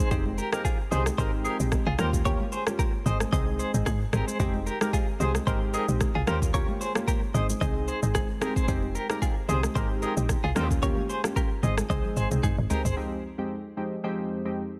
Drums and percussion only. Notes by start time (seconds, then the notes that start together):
0.00 shaker
0.11 kick, low conga, shaker
0.26 high conga
0.38 shaker
0.53 cross-stick, high conga, shaker
0.65 kick, shaker
0.92 low conga, shaker
1.06 cross-stick, high conga, shaker
1.18 kick, low conga, shaker
1.45 shaker
1.60 shaker
1.72 kick, cross-stick, high conga, low conga, shaker
1.99 cross-stick, high conga, shaker
2.13 kick, shaker
2.25 kick, low conga, shaker
2.40 high conga
2.52 shaker
2.67 cross-stick, high conga, shaker
2.79 kick, shaker
3.06 low conga, shaker
3.20 cross-stick, high conga, shaker
3.32 kick, low conga, shaker
3.59 shaker
3.74 shaker
3.86 kick, cross-stick, high conga, low conga, shaker
4.13 cross-stick, high conga, shaker
4.28 high conga, shaker
4.40 kick, low conga, shaker
4.54 high conga
4.67 shaker
4.81 cross-stick, high conga, shaker
4.93 kick, shaker
5.20 low conga, shaker
5.35 cross-stick, high conga, shaker
5.47 kick, low conga, shaker
5.74 shaker
5.89 shaker
6.01 kick, cross-stick, high conga, low conga, shaker
6.27 cross-stick, high conga, shaker
6.42 kick, shaker
6.54 kick, low conga, shaker
6.68 high conga
6.81 shaker
6.95 cross-stick, high conga, shaker
7.08 kick, shaker
7.34 low conga, shaker
7.50 high conga, shaker
7.61 kick, low conga, shaker
7.88 shaker
8.03 shaker
8.15 kick, cross-stick, high conga, low conga, shaker
8.41 cross-stick, high conga, shaker
8.56 kick, shaker
8.68 kick, low conga, shaker
8.83 high conga
8.95 shaker
9.10 cross-stick, high conga, shaker
9.22 kick, shaker
9.49 low conga, shaker
9.63 cross-stick, high conga, shaker
9.75 kick, low conga, shaker
10.02 shaker
10.17 shaker
10.29 kick, cross-stick, high conga, low conga, shaker
10.56 cross-stick, high conga, shaker
10.71 kick, shaker
10.83 kick, low conga, shaker
10.97 high conga
11.10 shaker
11.24 cross-stick, high conga, shaker
11.36 kick, shaker
11.63 low conga, shaker
11.78 cross-stick, high conga, shaker
11.90 kick, high tom, low conga, shaker
12.05 high tom
12.17 shaker
12.31 mid tom, shaker
12.43 kick, mid tom, high conga, low conga, shaker
12.70 floor tom, high conga, shaker
12.85 floor tom, shaker